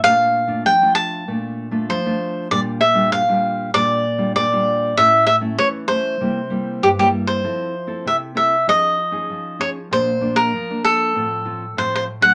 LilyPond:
<<
  \new Staff \with { instrumentName = "Cavaquinho" } { \time 4/4 \key c \mixolydian \tempo 4 = 97 f''4 g''8 a''4. c''4 | d''8 e''8 f''4 d''4 d''4 | e''8 e''8 cis''8 c''4. g'16 g'8 c''16~ | \key f \major c''4 e''8 e''8 ees''4. des''8 |
c''8. bes'8. a'4. c''16 c''8 ges''16 | }
  \new Staff \with { instrumentName = "Nylon-string guitar" } { \time 4/4 \key c \mixolydian << { <a d' f'>8. <a d' f'>8 <a d' f'>8. <a d' f'>8. <a d' f'>8 <a d' f'>8. | <g d' f'>8 r16 <g d' f'>8 <g d' f'>8. <g d' f'>8 r16 <g d' f'>8 <g d' f'>8. | <a cis' e'>8 r16 <a cis' e'>8. <a cis' e'>8 <g bes e'>16 r16 <g bes e'>8. <g bes e'>8. | \key f \major <c' e' a'>8 r16 <c' e' a'>8. <c' e' a'>16 r16 <des' ees' aes'>8 r16 <des' ees' aes'>8. <des' ees' aes'>16 r16 |
<f bes d'>16 r16 <f bes d'>8 r16 <f bes d'>8. <f c' f'>8 <f c' f'>16 r16 <f c' f'>8 r16 <ges a d'>16 | } \\ { bes,4 f4 bes,4 f4 | bes,4 bes,4 bes,4 bes,4 | a,4 e4 c4 g,4 | f4 c4 f4 f4 |
bes,4 f4 a,4 a,4 | } >> }
>>